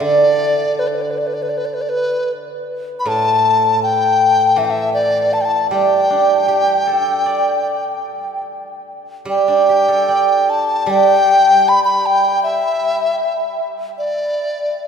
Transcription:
0.00 2.30 D3 medium
0.00 0.78 E3 soft
0.00 0.81 D5 medium
0.79 0.89 B4 medium
0.88 0.96 D5 soft
0.95 1.03 B4 soft
1.02 1.12 D5 soft
1.11 1.20 B4 soft
1.18 1.28 D5 soft
1.27 1.36 B4 medium
1.34 1.44 D5 soft
1.42 1.51 B4 medium
1.49 1.59 D5 medium
1.57 1.67 B4 soft
1.65 1.75 D5 soft
1.74 1.83 B4 medium
1.81 1.91 D5 medium
1.89 2.32 B4 medium
3.00 3.09 B5 medium
3.05 5.33 A2 medium
3.05 3.82 A5 medium
3.83 4.59 G5 medium
4.56 6.86 E3 soft
4.56 4.67 E5 medium
4.65 4.72 G5 medium
4.70 4.93 E5 medium
4.94 5.35 D5 medium
5.33 5.43 A5 medium
5.41 5.46 G5 medium
5.41 5.70 A5 medium
5.70 8.06 G3 soft
5.70 8.42 G5 medium
6.10 7.66 D4 soft
6.48 8.06 G4 soft
6.87 8.47 A4 soft
7.26 8.87 D5 soft
9.25 10.85 G3 medium
9.25 10.51 G5 medium
9.48 11.09 D4 soft
9.69 11.29 G4 soft
9.88 11.48 A4 soft
10.08 11.68 D5 soft
10.50 10.91 A5 medium
10.86 13.20 G3 medium
10.86 11.70 G5 medium
11.69 11.84 B5 medium
11.85 12.08 B5 medium
12.06 12.42 G5 medium
12.43 13.67 E5 medium
13.98 14.87 D5 medium

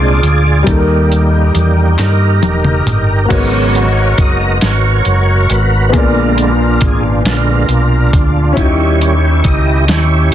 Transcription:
0.00 0.19 C2 medium
0.00 0.69 A#2 medium
0.00 0.21 G#3 soft
0.00 0.61 G#3 medium
0.00 0.21 C4 soft
0.00 0.21 D4 soft
0.00 0.62 D4 medium
0.00 0.63 F4 soft
0.00 0.65 F4 medium
0.00 0.65 G#4 medium
0.00 0.65 A#4 medium
0.00 0.71 D5 medium
0.23 0.63 D2 medium
0.23 closed hi-hat medium
0.63 1.51 D#2 medium
0.63 1.95 D#3 medium
0.63 3.24 G3 medium
0.63 3.24 A#3 soft
0.63 closed hi-hat medium
0.67 1.95 G3 soft
0.67 1.96 A#3 soft
0.67 1.97 D#4 medium
0.67 1.98 G4 medium
0.67 kick medium
0.71 0.76 A4 soft
0.78 3.30 A#4 medium
1.12 closed hi-hat soft
1.55 1.95 E2 medium
1.55 closed hi-hat medium
1.98 2.39 G2 medium
1.98 3.26 D#4 medium
1.98 3.27 G4 medium
1.98 3.29 A#4 medium
1.98 snare soft
1.98 clap medium
1.98 closed hi-hat medium
2.42 2.83 E1 medium
2.42 closed hi-hat soft
2.42 high tom medium
2.64 mid tom medium
2.86 3.27 G1 medium
2.86 closed hi-hat medium
2.86 mid tom medium
3.25 3.88 F#3 soft
3.25 3.34 A#3 soft
3.25 5.89 F#4 medium
3.29 4.14 G#1 medium
3.29 4.58 G#2 medium
3.29 3.88 C#3 soft
3.29 3.88 G#3 soft
3.29 3.89 B3 soft
3.29 5.88 B3 medium
3.29 4.58 F#4 medium
3.29 4.58 A#4 medium
3.29 5.90 A#4 medium
3.29 4.21 C#5 medium
3.29 5.91 C#5 medium
3.29 kick medium
3.29 closed hi-hat medium
3.29 crash medium
3.75 closed hi-hat soft
4.18 4.59 F#1 medium
4.18 4.60 D#5 medium
4.18 kick medium
4.18 closed hi-hat medium
4.61 5.03 G#1 medium
4.61 5.90 F#4 medium
4.61 5.90 A#4 medium
4.61 5.53 C#5 medium
4.61 snare loud
4.61 closed hi-hat medium
5.05 5.46 F#1 medium
5.05 closed hi-hat soft
5.50 5.90 G#1 medium
5.50 5.96 B4 medium
5.50 closed hi-hat medium
5.89 6.77 A#1 medium
5.89 7.21 A#2 medium
5.89 8.51 B3 medium
5.89 8.52 G#4 medium
5.93 6.53 D3 soft
5.93 6.53 G#3 soft
5.93 6.53 B3 medium
5.93 7.23 D4 medium
5.93 7.23 F4 medium
5.93 8.54 A#4 medium
5.93 6.85 A#4 medium
5.93 kick medium
5.93 closed hi-hat medium
5.97 8.55 D5 medium
6.38 closed hi-hat soft
6.81 7.22 G#1 medium
6.81 7.03 G#4 medium
6.81 kick medium
6.81 closed hi-hat medium
7.25 7.65 A#1 medium
7.25 7.66 D3 soft
7.25 7.66 G#3 soft
7.25 8.55 D4 medium
7.25 8.55 F4 soft
7.25 snare medium
7.25 closed hi-hat medium
7.29 7.67 B3 soft
7.29 8.11 A#4 medium
7.68 8.09 B1 medium
7.68 closed hi-hat soft
8.13 8.54 D2 medium
8.13 kick medium
8.13 closed hi-hat medium
8.53 9.15 D#3 medium
8.53 10.35 C#4 medium
8.53 10.35 E4 medium
8.57 9.41 D#2 medium
8.57 9.85 D#3 medium
8.57 9.15 G3 soft
8.57 9.16 C#4 medium
8.57 9.85 E4 medium
8.57 8.64 F#4 soft
8.57 9.85 G4 medium
8.57 9.48 C#5 medium
8.57 10.35 D#5 medium
8.57 kick medium
8.57 closed hi-hat medium
8.64 10.35 G4 medium
9.01 closed hi-hat soft
9.44 9.85 C#2 medium
9.44 9.90 D#5 medium
9.44 kick medium
9.44 closed hi-hat medium
9.88 10.29 D#2 medium
9.88 10.35 E4 medium
9.88 10.35 G4 medium
9.88 10.35 C#5 medium
9.88 snare medium
9.88 closed hi-hat medium
10.31 10.35 E1 medium

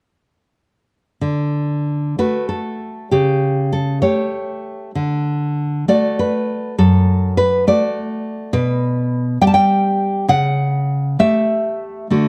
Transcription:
1.21 2.15 D3 soft
2.19 3.08 A3 soft
2.19 3.08 F#4 soft
2.19 2.48 B4 medium
2.49 3.09 A4 soft
3.11 4.01 C#3 soft
3.11 3.71 G4 medium
3.73 4.01 A4 medium
4.02 4.90 A3 soft
4.02 4.91 G4 soft
4.02 4.90 C#5 medium
4.95 5.86 D3 soft
5.88 6.75 A3 soft
5.88 6.75 F#4 soft
5.88 6.18 D5 medium
6.19 6.76 B4 medium
6.78 7.65 F#2 soft
6.78 7.36 A4 medium
7.37 7.66 B4 medium
7.67 8.50 A3 soft
7.67 8.50 F#4 soft
7.67 8.51 D5 medium
8.53 9.37 B2 medium
8.53 9.37 B4 medium
9.41 10.25 G3 soft
9.41 10.25 G4 soft
9.41 9.47 G5 medium
9.47 9.53 A5 medium
9.54 10.26 G5 medium
10.28 11.16 C#3 medium
10.28 11.16 F#5 medium
11.19 12.06 A3 soft
11.19 12.07 G4 soft
11.19 12.07 E5 medium
12.10 12.28 D3 soft
12.10 12.28 A3 soft
12.10 12.28 F#4 soft

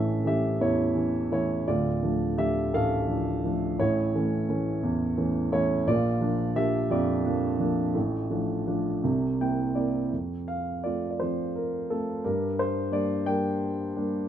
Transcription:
0.00 1.63 A1 medium
0.00 1.63 A2 medium
0.00 0.23 E3 soft
0.00 0.24 A3 soft
0.00 0.25 C#4 medium
0.00 0.22 A4 medium
0.00 0.26 E5 medium
0.25 0.81 E3 soft
0.25 0.82 A3 soft
0.25 0.82 C#4 soft
0.25 0.59 G4 medium
0.25 0.59 E5 medium
0.61 1.63 E2 medium
0.61 1.27 E4 medium
0.61 1.27 C#5 medium
0.95 1.30 E3 soft
0.95 1.30 A3 soft
0.95 1.30 C#4 soft
1.31 1.59 E3 soft
1.31 1.60 A3 soft
1.31 1.60 C#4 soft
1.31 1.65 E4 medium
1.31 1.68 C#5 medium
1.68 3.76 D1 medium
1.68 3.75 D2 medium
1.68 2.34 F4 medium
1.68 2.40 D5 medium
2.03 2.37 F3 soft
2.03 2.36 A3 soft
2.03 2.37 D4 soft
2.38 2.95 F3 soft
2.38 2.95 A3 soft
2.38 2.95 D4 soft
2.38 2.71 G4 medium
2.38 2.75 E5 medium
2.73 3.76 A1 medium
2.73 3.75 A4 medium
2.73 3.82 F5 medium
3.08 3.43 F3 soft
3.08 3.43 A3 soft
3.08 3.44 D4 soft
3.44 3.72 F3 soft
3.44 3.72 A3 soft
3.44 3.73 D4 soft
3.79 5.83 A1 medium
3.79 5.83 A2 medium
3.79 5.48 E4 medium
3.79 5.48 C#5 medium
4.15 4.48 E3 soft
4.15 4.47 A3 soft
4.15 4.48 C#4 medium
4.49 5.04 E3 soft
4.49 5.04 A3 soft
4.49 5.04 C#4 medium
4.83 5.84 E2 medium
5.17 5.50 E3 soft
5.17 5.50 A3 soft
5.17 5.51 C#4 medium
5.51 5.79 E3 soft
5.51 5.80 A3 soft
5.51 5.80 C#4 medium
5.51 5.85 E4 medium
5.51 5.88 C#5 medium
5.87 7.91 A#1 medium
5.87 7.91 A#2 medium
5.87 6.53 F4 medium
5.87 6.59 D5 medium
6.21 6.54 F3 medium
6.21 6.54 A#3 soft
6.21 6.54 D4 medium
6.55 7.11 F3 medium
6.55 7.11 A#3 soft
6.55 7.11 D4 medium
6.55 6.88 G4 medium
6.55 6.92 E5 medium
6.90 7.92 F2 medium
6.90 9.36 F4 medium
6.90 9.36 D5 medium
7.25 7.57 F3 soft
7.25 7.58 A#3 soft
7.25 7.59 D4 medium
7.59 7.88 F3 soft
7.59 7.88 A#3 soft
7.59 7.88 D4 medium
7.95 8.99 A1 medium
7.95 8.99 A2 medium
8.30 8.65 F3 soft
8.30 8.66 A3 soft
8.30 8.66 D4 medium
8.67 8.96 F3 soft
8.67 8.96 A3 soft
8.67 8.96 D4 medium
9.04 10.09 C2 medium
9.04 10.09 C3 medium
9.40 9.73 A#3 soft
9.40 9.74 C4 soft
9.40 9.74 E4 soft
9.40 9.74 G5 medium
9.75 10.04 A#3 soft
9.75 10.05 C4 soft
9.75 10.05 E4 soft
9.75 10.09 D5 medium
10.13 12.20 F2 soft
10.48 10.82 F5 medium
10.84 11.54 A3 soft
10.84 11.20 C4 soft
10.84 11.20 F4 soft
10.84 11.09 D5 medium
11.11 11.19 D5 soft
11.20 11.89 F3 soft
11.20 11.89 C4 soft
11.20 11.89 F4 soft
11.20 11.56 C5 medium
11.56 11.91 A#4 medium
11.90 12.24 A3 soft
11.90 12.24 C4 soft
11.90 12.24 F4 soft
11.90 12.25 A4 medium
12.24 14.26 G2 medium
12.24 12.90 D4 soft
12.24 13.22 G4 soft
12.24 12.59 A#4 medium
12.59 12.90 C5 medium
12.91 13.25 G3 soft
12.91 13.25 A#3 soft
12.91 13.26 D4 soft
12.91 13.25 D5 medium
13.26 13.93 G3 soft
13.26 13.93 A#3 soft
13.26 13.94 D4 soft
13.26 14.26 A#4 medium
13.26 14.25 D5 medium
13.26 14.00 G5 medium
13.96 14.29 G3 soft
13.96 14.29 A#3 soft
13.96 14.29 D4 soft

